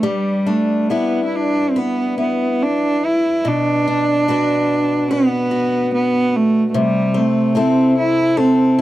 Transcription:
Already playing: D4 G4 B4
0.03 G3
0.47 A3 D4
0.90 B3 D4 E4 B4
1.25 E4
1.35 D4
1.70 C4
1.76 B3 B4
2.18 B3 E4
2.63 D4
3.05 E4
3.45 B2 D4
3.88 D4
4.28 D4 F#4 B4
5.11 B3 B4
5.51 F#4
5.94 B3
6.36 A3
6.68 A3
6.74 C3 G3
7.14 A3 C4
7.55 C4 E4 A4
7.98 E4
8.37 C4 A4

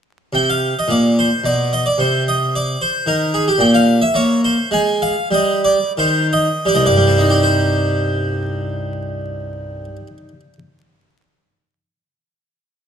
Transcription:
0.33 C3 G5
0.50 F5
0.79 D#5
0.88 A#2 D5
1.19 C5
1.44 B2 D5
1.73 D#5
1.86 D5
1.98 C3 C5
2.28 D#5
2.55 D5
2.82 C5
3.06 D#3 A#4
3.34 G#4
3.48 G4
3.58 A#2 G5
3.74 F5
4.02 E5
4.14 A#3 C#5
4.44 C5
4.71 G#3 G#5
5.02 F5
5.31 G3 D#5
5.64 D5
5.97 D#3 C5
6.33 D#5
6.65 G3 D5
6.74 C2 D#5
6.86 G2 D5
6.97 G3
7.07 C4
7.18 D#4
7.30 G4
7.43 C5

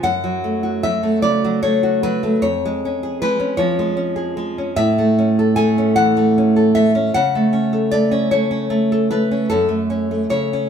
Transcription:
0.03 F#2 F#5
0.24 F#3
0.44 A3
0.63 F#4
0.83 F#3 E5
1.03 A3
1.22 C#3 D5
1.44 F#3
1.63 A3 C#5
1.83 F#4
2.03 F#3 B4
2.23 A3
2.42 F2 C#5
2.65 G#3
2.85 C#4
3.03 G#4
3.22 G#3 B4
3.40 C#4
3.57 F3 C#5
3.79 G#3
3.97 C#4
4.16 G#4
4.37 G#3
4.58 C#4
4.76 A2 E5
4.98 A3
5.19 C#4
5.39 A4
5.56 A3 G#5
5.78 C#4
5.96 E3 F#5
6.17 A3
6.38 C#4
6.56 A4
6.75 A3 E5
6.95 C#4
7.14 C#3 F#5
7.35 A3
7.53 C#4
7.73 A4
7.91 A3 D5
8.11 C#4
8.31 A3 C#5
8.51 C#4
8.70 A3
8.92 A4
9.11 A3 B4
9.31 C#4
9.50 F#2 A4
9.69 A3
9.90 C#4
10.11 A3
10.30 C#3 C#5
10.53 C#4

